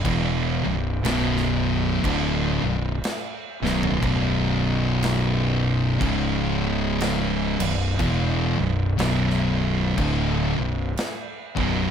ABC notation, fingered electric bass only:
X:1
M:4/4
L:1/8
Q:"Swing" 1/4=60
K:Bm
V:1 name="Fingered electric bass" clef=bass
E,,, B,,,, B,,,,2 D,,, B,,,, z B,,,, | B,,,,4 C,,,3 B,,,, | E,,, B,,,, B,,,,2 D,,, B,,,, z B,,,, |]